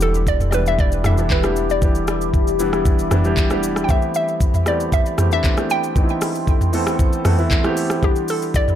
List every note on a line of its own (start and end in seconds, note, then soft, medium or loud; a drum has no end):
0.00 3.85 E1 medium
0.00 0.37 E3 medium
0.00 0.38 G3 medium
0.00 0.38 B3 medium
0.00 0.38 D4 medium
0.00 0.38 G4 medium
0.00 3.85 G4 medium
0.00 0.26 A4 loud
0.00 3.85 E5 medium
0.00 7.99 B5 medium
0.00 3.85 D6 medium
0.00 shaker loud
0.14 shaker soft
0.27 0.50 D5 loud
0.27 kick medium
0.27 shaker medium
0.40 mid tom medium
0.40 shaker soft
0.51 0.94 E3 medium
0.51 0.94 G3 medium
0.51 0.95 B3 medium
0.51 0.95 D4 medium
0.51 0.95 E4 medium
0.51 0.66 B4 loud
0.51 0.53 D5 medium
0.51 cross-stick medium
0.51 shaker loud
0.66 0.80 E5 loud
0.66 shaker medium
0.79 0.91 D5 loud
0.79 kick loud
0.79 shaker medium
0.92 shaker medium
1.04 1.15 E3 medium
1.04 1.15 G3 medium
1.04 1.15 B3 medium
1.04 1.16 D4 medium
1.04 1.16 A4 medium
1.04 1.17 E5 loud
1.04 cross-stick medium
1.04 mid tom medium
1.04 shaker medium
1.17 1.38 E3 medium
1.17 1.38 G3 medium
1.17 1.39 B3 medium
1.17 1.39 D4 medium
1.17 1.39 E4 medium
1.17 shaker medium
1.30 1.71 B4 medium
1.30 kick medium
1.30 clap medium
1.30 shaker medium
1.43 1.74 E3 medium
1.43 1.74 G3 medium
1.43 1.75 B3 medium
1.43 1.75 D4 medium
1.43 1.75 G4 medium
1.43 cross-stick medium
1.43 shaker soft
1.56 shaker loud
1.70 3.21 D5 medium
1.70 shaker soft
1.81 2.44 E3 medium
1.81 2.44 G3 medium
1.81 2.45 B3 medium
1.81 2.45 D4 medium
1.81 2.45 G4 medium
1.81 kick loud
1.81 shaker medium
1.95 shaker soft
2.08 cross-stick loud
2.08 shaker loud
2.21 shaker medium
2.34 kick medium
2.34 shaker medium
2.47 shaker medium
2.59 3.01 E3 medium
2.59 3.01 G3 medium
2.59 3.02 B3 medium
2.59 3.02 D4 medium
2.59 3.02 E4 loud
2.59 shaker loud
2.73 cross-stick medium
2.73 shaker medium
2.85 kick loud
2.85 shaker medium
2.99 shaker medium
3.11 3.22 E3 medium
3.11 3.22 G3 medium
3.11 3.22 B3 medium
3.11 3.22 D4 medium
3.11 3.23 E4 loud
3.11 cross-stick medium
3.11 mid tom medium
3.11 shaker medium
3.24 3.45 E3 medium
3.24 3.45 G3 medium
3.24 3.45 B3 medium
3.24 3.46 D4 medium
3.24 3.46 G4 medium
3.24 shaker medium
3.37 kick medium
3.37 clap medium
3.37 shaker medium
3.50 3.81 E3 medium
3.50 3.81 G3 medium
3.50 3.82 B3 medium
3.50 3.82 D4 medium
3.50 3.82 G4 loud
3.50 cross-stick medium
3.50 shaker soft
3.63 shaker loud
3.76 cross-stick medium
3.76 shaker soft
3.84 3.90 G5 medium
3.88 4.51 E3 medium
3.88 4.51 A3 medium
3.88 4.52 B3 medium
3.88 4.52 C4 medium
3.88 4.52 G4 medium
3.88 7.99 A4 medium
3.88 4.15 E5 medium
3.88 7.99 G5 medium
3.88 7.99 C6 medium
3.88 kick loud
3.88 shaker medium
4.02 shaker soft
4.14 4.63 E5 loud
4.14 shaker loud
4.28 shaker soft
4.41 kick medium
4.41 shaker medium
4.54 mid tom medium
4.54 shaker soft
4.66 5.08 E3 medium
4.66 5.08 A3 medium
4.66 5.08 B3 medium
4.66 5.09 C4 medium
4.66 5.09 G4 medium
4.66 4.94 D5 medium
4.66 cross-stick medium
4.66 shaker loud
4.80 shaker medium
4.92 5.32 E5 loud
4.92 kick loud
4.92 shaker medium
5.06 shaker medium
5.18 5.29 E3 medium
5.18 5.29 A3 medium
5.18 5.29 B3 medium
5.18 5.29 C4 medium
5.18 5.30 G4 medium
5.18 cross-stick medium
5.18 mid tom medium
5.18 shaker medium
5.31 5.52 E3 medium
5.31 5.52 A3 medium
5.31 5.52 B3 medium
5.31 5.53 C4 medium
5.31 5.53 D4 medium
5.31 5.68 E5 loud
5.31 shaker medium
5.44 kick medium
5.44 clap medium
5.44 shaker medium
5.57 5.88 E3 medium
5.57 5.88 A3 medium
5.57 5.89 B3 medium
5.57 5.89 C4 medium
5.57 5.89 G4 medium
5.57 cross-stick medium
5.57 shaker soft
5.70 6.44 G5 loud
5.70 shaker loud
5.84 shaker soft
5.95 6.58 E3 medium
5.95 6.58 A3 medium
5.95 6.58 B3 medium
5.95 6.59 C4 medium
5.95 6.03 D#4 medium
5.95 kick loud
5.95 shaker medium
6.03 6.62 E4 medium
6.09 shaker medium
6.21 cross-stick loud
6.21 open hi-hat medium
6.21 shaker loud
6.35 shaker soft
6.47 kick medium
6.47 shaker medium
6.61 mid tom medium
6.61 shaker soft
6.73 7.15 E3 medium
6.73 7.15 A3 medium
6.73 7.15 B3 medium
6.73 7.16 C4 medium
6.73 7.16 A4 loud
6.73 open hi-hat medium
6.73 shaker loud
6.87 cross-stick medium
6.87 shaker medium
6.99 kick loud
6.99 shaker medium
7.13 shaker medium
7.24 7.36 E3 medium
7.24 7.36 A3 medium
7.24 7.36 B3 medium
7.24 7.36 C4 medium
7.24 7.36 A4 loud
7.24 cross-stick medium
7.24 mid tom medium
7.24 open hi-hat medium
7.24 shaker medium
7.38 7.59 E3 medium
7.38 7.59 A3 medium
7.38 7.59 B3 medium
7.38 7.59 C4 medium
7.38 7.60 E4 medium
7.38 shaker medium
7.51 kick medium
7.51 clap medium
7.51 shaker medium
7.64 7.95 E3 medium
7.64 7.95 A3 medium
7.64 7.95 B3 medium
7.64 7.96 C4 medium
7.64 7.96 G4 loud
7.64 cross-stick medium
7.64 shaker soft
7.77 open hi-hat medium
7.77 shaker medium
7.90 cross-stick medium
7.90 shaker medium
8.02 8.65 E3 medium
8.02 8.65 G3 medium
8.02 8.65 B3 medium
8.02 8.66 D4 medium
8.02 8.75 G4 medium
8.02 8.66 G4 medium
8.02 8.30 G4 loud
8.02 8.75 E5 medium
8.02 8.75 B5 medium
8.02 8.75 D6 medium
8.02 kick loud
8.02 shaker medium
8.16 shaker soft
8.28 8.56 A4 loud
8.28 open hi-hat medium
8.28 shaker loud
8.42 shaker medium
8.54 8.75 D5 loud
8.54 kick medium
8.54 shaker medium
8.68 mid tom medium
8.68 shaker soft